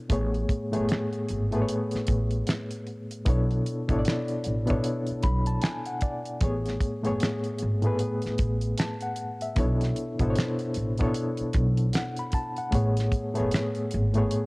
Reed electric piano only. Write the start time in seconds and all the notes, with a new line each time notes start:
Already playing: B2 B3 D4 E4 A4 C#5
0.09 A2 A3 B3 G#4 C#5
0.72 A2 A3 B3 G#4
0.76 C#5
1.51 A2 A3 B3 G#4
1.56 B4
1.62 C#5
3.25 B2 B3 D4 E4 A4
3.29 C#5
3.88 B2 B3 D4 E4 A4
3.92 C#5
3.99 D5
4.66 B2 B3 D4 E4 A4
4.70 C#5
5.23 B5
5.47 A5
5.63 G#5
5.87 F#5
6.02 D5
6.40 A2 A3 B3 G#4
6.44 C#5
7.03 A2 A3 B3 G#4
7.07 C#5
7.82 A2 A3 B3 G#4
7.86 B4
8.79 A5
9.02 F#5
9.42 E5
9.55 B2 B3 D4 E4 A4
9.60 C#5
10.19 B2 B3 D4 E4 A4
10.24 C5
10.30 C#5
10.99 B2 B3 D4 E4 A4 C#5
11.95 F#5
12.19 B5
12.34 A5
12.58 F#5
12.71 A2 A3 B3 G#4
12.75 C#5
13.34 A2 A3 B3 G#4
13.38 C#5
14.13 A2 A3 B3 G#4
14.18 C#5